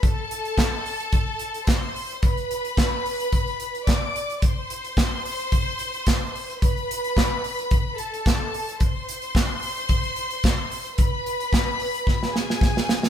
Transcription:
<<
  \new Staff \with { instrumentName = "String section" } { \time 4/4 \key a \minor \tempo 4 = 110 <a' a''>2. <c'' c'''>4 | <b' b''>2. <d'' d'''>4 | <c'' c'''>1 | <b' b''>2~ <b' b''>8 <a' a''>4. |
<c'' c'''>1 | <b' b''>2~ <b' b''>8 <gis' gis''>4. | }
  \new DrumStaff \with { instrumentName = "Drums" } \drummode { \time 4/4 <hh bd>8 hh16 hh16 <hc hh bd sn>8 hho16 hh16 <hh bd>8 hh16 hh16 <hc hh bd sn>8 hho16 hh16 | <hh bd>16 hh16 hh16 hh16 <hc hh bd sn>8 hho16 hh16 <hh bd>16 hh16 hh16 hh16 <hc hh bd sn>8 hh16 hh16 | <hh bd>8 hh16 hh16 <hc hh bd sn>8 hho16 hh16 <hh bd>8 hh16 hh16 <hc hh bd sn>8 hho16 hh16 | <hh bd>16 hh16 hh16 hh16 <hc hh bd sn>8 hho16 hh16 <hh bd>8 hh16 hh16 <hc hh bd sn>8 hho16 hh16 |
<hh bd>8 hh16 hh16 <hc hh bd sn>8 hho16 hh16 <hh bd>16 hh16 hh16 hh16 <hc hh bd sn>8 hho16 hh16 | <hh bd>8 hh16 hh16 <hc hh bd sn>8 hho16 hh16 <bd sn>16 sn16 sn16 sn16 <bd sn>16 sn16 sn16 sn16 | }
>>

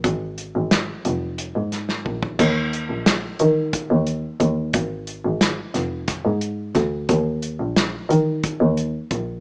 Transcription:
<<
  \new Staff \with { instrumentName = "Double bass" } { \clef bass \time 7/8 \key f \phrygian \tempo 4 = 89 aes,,8. aes,,8 r16 f,,8. aes,8. bes,,8 | ees,8. bes,,8 r16 ees8. ees,8 r16 ees,16 r16 | aes,,8. aes,,8 r16 f,,8. aes,8. d,8 | ees,8. bes,,8 r16 ees8. ees,8 r16 bes,,16 r16 | }
  \new DrumStaff \with { instrumentName = "Drums" } \drummode { \time 7/8 <hh bd>8 hh8 <hh sn>8 hh8 hh8 <hh sn>16 sn16 bd16 bd16 | <cymc hh bd>8 hh8 <hh sn>8 hh8 <hh bd>8 hh8 <hh bd>8 | <hh bd>8 hh8 <hh sn>8 <hh sn>8 <hh bd sn>8 hh8 <hh bd sn>8 | <hh bd>8 hh8 <hh sn>8 hh8 <hh bd>8 hh8 <hh bd>8 | }
>>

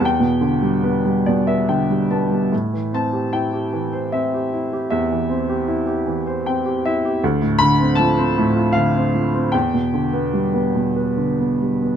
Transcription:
<<
  \new Staff \with { instrumentName = "Grand piano" } { \time 3/4 \key a \minor \tempo 4 = 76 << { g''2 r4 | r8 a''8 g''4 e''4 | e''2~ e''8 r8 | r8 b''8 a''4 f''4 |
g''2~ g''8 r8 | } \\ { r4. d''16 e''16 g''8 a''8 | r2. | r2 g''8 e''8 | r2. |
r2. | } >> }
  \new Staff \with { instrumentName = "Grand piano" } { \time 3/4 \key a \minor e,16 b,16 d16 g16 b16 g16 b,16 b'16 d16 g16 b16 g16 | a,16 e16 c'16 g'16 e'16 g'16 e16 c''16 c'16 g'16 e'16 g'16 | e,16 e16 c'16 g'16 e'16 g'16 e16 c''16 c'16 g'16 e'16 g'16 | d,16 a,16 d16 c'16 f16 c'16 a,16 f'16 d16 c'16 f16 c'16 |
e,16 b,16 d16 b16 g16 b16 b,16 b'16 d16 b16 g16 b16 | }
>>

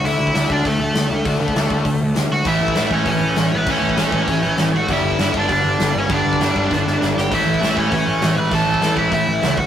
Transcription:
<<
  \new Staff \with { instrumentName = "Lead electric guitar" } { \time 4/4 \key a \mixolydian \tempo 4 = 198 <e' e''>4. <d' d''>8 <a a'>2~ | <a a'>2. r8 <fis' fis''>8 | <e' e''>4. <cis' cis''>8 <cis' cis''>4. <b b'>8 | <cis' cis''>2.~ <cis' cis''>8 <fis' fis''>8 |
<e' e''>4. <d' d''>8 <d' d''>4. <cis' cis''>8 | <d' d''>2.~ <d' d''>8 <g' g''>8 | <e' e''>4. <cis' cis''>8 <cis' cis''>4. <b' b''>8 | <a' a''>4. <e' e''>8 <e' e''>4. <fis' fis''>8 | }
  \new Staff \with { instrumentName = "Distorted electric guitar" } { \clef bass \time 4/4 \key a \mixolydian r1 | r1 | <a, e a>4 <a, e a>4 <a, e a>4 <a, e a>4 | <a, e a>4 <a, e a>4 <a, e a>4 <a, e a>4 |
<g, d g>4 <g, d g>4 <g, d g>4 <g, d g>4 | <g, d g>4 <g, d g>4 <g, d g>4 <g, d g>4 | <a, e a>4 <a, e a>4 <a, e a>4 <a, e a>4 | <a, e a>4 <a, e a>4 <a, e a>4 <a, e a>8 r8 | }
  \new Staff \with { instrumentName = "Distorted electric guitar" } { \clef bass \time 4/4 \key a \mixolydian <d a d'>4 <d a d'>4 <d a>8 r8 <d a>8 r8 | <d a d'>4 <d a d'>4 <d a>8 r8 <d a>8 r8 | <a, e a>4 <a, e a>4 <a, e>8 r8 <a, e>8 r8 | <a, e a>4 <a, e a>4 <a, e>8 r8 <a, e>8 r8 |
<g, d g>4 <g, d g>4 <g, d>8 r8 <g, d>8 r8 | <g, d g>4 <g, d g>4 <g, d>8 r8 <g, d>8 r8 | <a, e a>4 <a, e a>4 <a, e>8 r8 <a, e>8 r8 | <a, e a>4 <a, e a>4 <a, e>8 r8 <a, e>8 r8 | }
  \new Staff \with { instrumentName = "Distorted electric guitar" } { \clef bass \time 4/4 \key a \mixolydian r1 | r1 | <a, e a>4 <a, e a>4 <a, e>8 r8 <a, e>8 r8 | <a, e a>4 <a, e a>4 <a, e>8 r8 <a, e>8 r8 |
<g, d g>4 <g, d g>4 <g, d>8 r8 <g, d>8 r8 | <g, d g>4 <g, d g>4 <g, d>8 r8 <g, d>8 r8 | <a, e a>4 <a, e a>4 <a, e>8 r8 <a, e>8 r8 | <a, e a>4 <a, e a>4 <a, e>8 r8 <a, e>8 r8 | }
  \new Staff \with { instrumentName = "Picked electric bass" } { \clef bass \time 4/4 \key a \mixolydian d,8 d,8 d,8 d,8 d,8 d,8 d,8 d,8 | d,8 d,8 d,8 d,8 d,8 d,8 d,8 d,8 | a,,8 a,,8 a,,8 a,,8 a,,8 a,,8 a,,8 a,,8 | a,,8 a,,8 a,,8 a,,8 a,,8 a,,8 a,,8 a,,8 |
g,,8 g,,8 g,,8 g,,8 g,,8 g,,8 g,,8 g,,8 | g,,8 g,,8 g,,8 g,,8 g,,8 g,,8 g,,8 g,,8 | a,,8 a,,8 a,,8 a,,8 a,,8 a,,8 a,,8 a,,8 | a,,8 a,,8 a,,8 a,,8 a,,8 a,,8 cis,8 d,8 | }
  \new DrumStaff \with { instrumentName = "Drums" } \drummode { \time 4/4 hho8. bd16 <hho sn>8 bd8 <hho bd>4 <hho sn>4 | <hho bd>8. bd16 <hho sn>8 bd8 <hho bd>4 <hho sn>4 | <hho bd>8. bd16 <hho sn>8 bd8 <hho bd>4 <hho sn>4 | <hho bd>8. bd16 <hho sn>8 bd8 <hho bd>4 <hho sn>4 |
<hho bd>8. bd16 <hho sn>8 bd8 <hho bd>4 <hho sn>4 | <hho bd>8. bd16 <hho sn>8 bd8 <bd sn>8 sn8 sn8 sn8 | <hho bd>8. bd16 <hho sn>8 bd8 <hho bd>4 <hho sn>4 | <hho bd>8. bd16 <hho sn>8 bd8 <hho bd>4 <hho sn>8 bd8 | }
>>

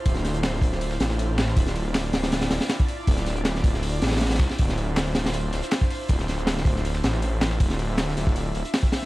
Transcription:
<<
  \new Staff \with { instrumentName = "Analog synth pad" } { \time 4/4 \key d \minor \tempo 4 = 159 << { c''1 | d''1~ | d''1 | c''1~ |
c''1 | e''1 | } \\ { <d' e' f'>1~ | <d' e' f'>1~ | <d' e' f'>1~ | <d' e' f'>1~ |
<d' e' f'>1~ | <d' e' f'>1 | } >> }
  \new Staff \with { instrumentName = "Detuned saw bass" } { \clef bass \time 4/4 \key d \minor d,,4. d,,4 a,,4. | d,,4. d,,4 d,,8 r4 | d,,4. d,,4 a,,4 c,8 | d,,4. d,,4 d,,8 r4 |
d,,4. d,,4 a,,4. | d,,4. d,,4 d,,8 r4 | }
  \new DrumStaff \with { instrumentName = "Drums" } \drummode { \time 4/4 <hh hho bd>16 <hh sn>16 <hh hho sn>16 hh16 <hh hho sn>16 sn16 <hh hho bd>16 sn16 <hh hho>16 sn16 <hh hho sn>16 sn16 <hh hho>8 <hh hho sn>16 sn16 | <hh hho bd>16 <hh sn>16 <hh hho>8 <hh hho sn>16 sn16 <hh hho sn>16 <hho sn>16 <hh hho sn>16 <hho sn>16 <hh hho sn>16 <hho sn>16 <hh hho sn>16 <hh bd>16 <hh hho>8 | <hh hho bd>16 <hh sn>16 <hh hho sn>16 hh16 <hh hho sn>16 sn16 <hh hho bd>16 sn16 <hh hho>8 <hh hho sn>32 <hho sn>32 <hho sn>32 <hho sn>32 <hh hho sn>32 <hho sn>32 <hho sn>32 <hho sn>32 <hh hho bd sn>16 sn16 | <hh hho bd>16 <hh sn>16 <hh hho>8 <hh hho sn>16 sn16 <hh hho sn>16 <hho sn>16 <hh hho>8 <hh hho sn>16 <hh sn>16 <hh hho sn>16 <hh bd>16 <hh hho>8 |
<hh hho bd>16 <hh sn>16 <hh hho sn>16 hh16 <hh hho sn>16 sn16 <hh hho bd>16 sn16 <hh hho>16 sn16 <hh hho sn>16 sn16 <hh hho>8 <hh hho sn>16 sn16 | <hh hho bd>16 <hh sn>16 <hh hho>8 <hh hho sn>16 sn16 <hh hho sn>16 <bd sn>16 <hh hho>8 <hh hho>16 hh16 <hh hho sn>16 bd16 <hh hho sn>16 sn16 | }
>>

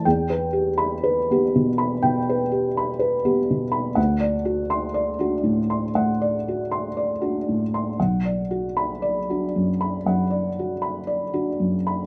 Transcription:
<<
  \new Staff \with { instrumentName = "Felt piano" } { \time 4/4 \key b \phrygian \tempo 4 = 60 << { r8. b''8 r2 r8. | r8. c'''8 r2 r8. | r8. b''8 r2 r8. | } \\ { g''16 b'16 g'8 b'16 g'16 b,16 b''16 g''16 b'16 g'16 b''16 b'16 g'16 b,16 b''16 | fis''16 d''16 fis'8 d''16 fis'16 a,16 c'''16 fis''16 d''16 fis'16 c'''16 d''16 fis'16 a,16 c'''16 | fis''16 d''16 fis'8 d''16 fis'16 fis,16 b''16 fis''16 d''16 fis'16 b''16 d''16 fis'16 fis,16 b''16 | } >> }
  \new Staff \with { instrumentName = "Felt piano" } { \clef bass \time 4/4 \key b \phrygian e,4~ e,16 b8 r16 b,8 r8. b8 r16 | d,4~ d,16 d'8 r16 a,8 r8. d'8 r16 | b,,4~ b,,16 d'8 r16 fis,8 r8. d'8 r16 | }
>>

